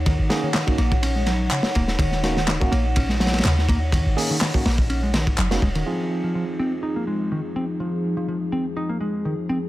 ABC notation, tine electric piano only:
X:1
M:4/4
L:1/16
Q:"Swing 16ths" 1/4=124
K:Fphr
V:1 name="Tine electric piano"
z2 [B,DEA]2 z [B,DEG] z8 z2 | z2 [B,DEG] z2 [B,DEG] z8 z2 | z2 [B,DEA]2 z [B,DEG] z6 z [B,DEG] z2 | [CEFA]16- |
[CEFA]16 |]